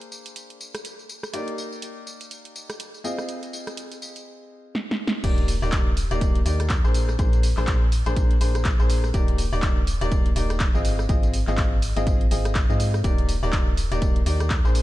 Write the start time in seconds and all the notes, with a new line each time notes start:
Already playing: A#3 D4 G#4 C5
0.01 closed hi-hat
0.12 tambourine
0.26 closed hi-hat, tambourine
0.36 closed hi-hat, tambourine
0.50 closed hi-hat
0.61 tambourine
0.75 cross-stick, closed hi-hat, tambourine
0.85 closed hi-hat, tambourine
0.99 tambourine
1.09 tambourine
1.23 cross-stick, tambourine
1.34 A#3 D#4 G4 D5, closed hi-hat, tambourine
1.48 closed hi-hat
1.58 tambourine
1.72 tambourine
1.82 closed hi-hat, tambourine
2.07 tambourine
2.21 closed hi-hat, tambourine
2.31 closed hi-hat, tambourine
2.45 closed hi-hat
2.56 tambourine
2.70 cross-stick, closed hi-hat, tambourine
2.80 closed hi-hat, tambourine
2.94 tambourine
3.04 C4 F4 G#4 D#5, tambourine
3.18 cross-stick, tambourine
3.29 closed hi-hat, tambourine
3.43 closed hi-hat, tambourine
3.53 tambourine
3.67 cross-stick, closed hi-hat, tambourine
3.77 closed hi-hat, tambourine
3.92 closed hi-hat, tambourine
4.02 tambourine
4.16 closed hi-hat, tambourine
4.75 snare
4.91 snare
5.07 snare
5.24 D#1 A#3 D#4 G4 D5, kick, closed hi-hat, crash, tambourine
5.38 closed hi-hat
5.48 open hi-hat, tambourine
5.62 D#1 A#3 D#4 G4 D5, tambourine
5.72 kick, clap, closed hi-hat, tambourine
5.97 open hi-hat, tambourine
6.11 D#1 A#3 D#4 G4 D5, closed hi-hat, tambourine
6.21 kick, closed hi-hat, tambourine
6.35 closed hi-hat
6.46 D#2 A#3 D#4 G4 D5, open hi-hat, tambourine
6.60 cross-stick, closed hi-hat, tambourine
6.70 kick, clap, closed hi-hat, tambourine
6.84 A#1 A#3 D4 G#4 C5, tambourine
6.94 open hi-hat, tambourine
7.09 cross-stick, tambourine
7.19 A#1 A#3 D4 G#4 C5, kick, closed hi-hat, tambourine
7.33 closed hi-hat, tambourine
7.43 open hi-hat, tambourine
7.57 A#1 A#3 D4 G#4 C5, clap, tambourine
7.67 kick, clap, closed hi-hat, tambourine
7.92 open hi-hat, tambourine
8.06 A#1 A#3 D4 G#4 C5, closed hi-hat, tambourine
8.16 kick, closed hi-hat, tambourine
8.31 closed hi-hat
8.41 A#1 A#3 D4 G#4 C5, open hi-hat, tambourine
8.55 cross-stick, closed hi-hat, tambourine
8.65 kick, clap, closed hi-hat, tambourine
8.79 A#1 A#3 D4 G#4 C5, tambourine
8.90 open hi-hat, tambourine
9.04 cross-stick, tambourine
9.14 D#1 A#3 D#4 G4 D5, kick, closed hi-hat, tambourine
9.28 closed hi-hat
9.38 open hi-hat, tambourine
9.53 D#1 A#3 D#4 G4 D5, tambourine
9.62 kick, clap, closed hi-hat, tambourine
9.87 open hi-hat, tambourine
10.01 D#1 A#3 D#4 G4 D5, closed hi-hat, tambourine
10.12 kick, closed hi-hat, tambourine
10.26 closed hi-hat
10.36 D#1 A#3 D#4 G4 D5, open hi-hat, tambourine
10.50 cross-stick, closed hi-hat, tambourine
10.60 kick, clap, closed hi-hat, tambourine
10.75 G#1 C4 F4 G#4 D#5, tambourine
10.85 open hi-hat, tambourine
10.99 cross-stick, tambourine
11.09 G#1 C4 F4 G#4 D#5, kick, closed hi-hat, tambourine
11.23 closed hi-hat, tambourine
11.34 open hi-hat, tambourine
11.47 G#1 C4 F4 G#4 D#5, clap, tambourine
11.57 kick, clap, closed hi-hat, tambourine
11.82 open hi-hat, tambourine
11.96 G#1 C4 F4 G#4 D#5, closed hi-hat, tambourine
12.07 kick, closed hi-hat, tambourine
12.21 closed hi-hat
12.31 G#1 C4 F4 G#4 D#5, open hi-hat, tambourine
12.45 cross-stick, closed hi-hat, tambourine
12.55 kick, clap, closed hi-hat, tambourine
12.70 G#2 C4 F4 G#4 D#5, tambourine
12.80 open hi-hat, tambourine
12.94 cross-stick, tambourine
13.04 D#1 A#3 D#4 G4 D5, kick, closed hi-hat, tambourine
13.18 closed hi-hat
13.29 open hi-hat, tambourine
13.43 D#1 A#3 D#4 G4 D5, tambourine
13.53 kick, clap, closed hi-hat, tambourine
13.77 open hi-hat, tambourine
13.92 D#1 A#3 D#4 G4 D5, closed hi-hat, tambourine
14.02 kick, closed hi-hat, tambourine
14.16 closed hi-hat
14.26 D#2 A#3 D#4 G4 D5, open hi-hat, tambourine
14.40 cross-stick, closed hi-hat, tambourine
14.50 kick, clap, closed hi-hat, tambourine
14.65 A#1 A#3 D4 G#4 C5, tambourine
14.75 open hi-hat, tambourine